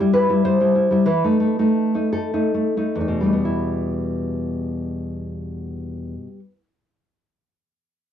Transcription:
0.00 0.28 G3 soft
0.00 0.13 E4 soft
0.00 0.11 G4 medium
0.13 0.29 E4 soft
0.13 0.42 B4 medium
0.29 0.44 G3 soft
0.29 0.60 E4 soft
0.45 0.59 G3 soft
0.45 1.04 C5 medium
0.60 0.89 G3 soft
0.60 0.74 E4 soft
0.75 0.91 E4 soft
0.91 1.05 G3 soft
0.91 1.06 E4 soft
1.05 1.22 E3 soft
1.05 2.09 B4 medium
1.24 1.39 A3 soft
1.24 1.58 D#4 soft
1.40 1.58 A3 soft
1.59 1.93 A3 soft
1.59 1.94 D#4 soft
1.94 2.32 A3 soft
1.94 2.12 D#4 soft
2.12 2.32 D#4 soft
2.12 2.96 A4 soft
2.33 2.53 A3 soft
2.33 2.76 D#4 soft
2.54 2.76 A3 soft
2.77 3.22 A3 soft
2.77 3.00 D#4 soft
2.96 6.14 E2 soft
3.01 3.23 D#4 soft
3.08 6.27 B2 soft
3.21 6.39 G3 soft
3.21 3.32 A3 soft
3.21 3.43 D#4 soft
3.33 6.52 B3 soft
3.45 6.64 E4 soft

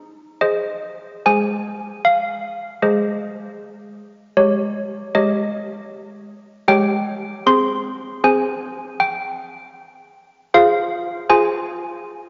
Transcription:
0.00 0.39 D#4 soft
0.41 1.21 G#4 soft
0.41 1.21 C5 soft
0.41 1.22 D#5 medium
1.26 2.78 G#3 soft
1.26 2.78 G#4 soft
1.26 2.78 C5 soft
1.26 2.02 G#5 medium
2.05 2.79 F5 medium
2.82 4.33 G#3 soft
2.82 4.33 G#4 soft
2.82 4.32 C5 soft
2.82 4.33 D#5 medium
4.37 5.12 G#3 soft
4.37 5.12 G4 soft
4.37 5.11 C#5 medium
5.15 6.64 G#3 soft
5.15 6.64 G4 soft
5.15 6.64 C#5 soft
5.15 6.64 D#5 medium
6.68 7.45 G#3 soft
6.68 7.44 G4 soft
6.68 7.45 C#5 soft
6.68 7.44 G5 medium
7.46 8.22 C4 soft
7.46 8.22 G#4 soft
7.46 8.22 C5 soft
7.46 8.21 C6 medium
8.24 10.49 C4 soft
8.24 10.49 G#4 soft
8.24 10.49 C5 soft
8.24 8.97 G#5 medium
9.00 10.49 G5 medium
10.54 11.28 F4 medium
10.54 11.28 G#4 soft
10.54 11.28 C5 soft
10.54 11.27 F5 medium
11.29 12.29 F4 medium
11.29 12.29 G#4 soft
11.29 12.29 C5 soft
11.29 12.29 G#5 medium

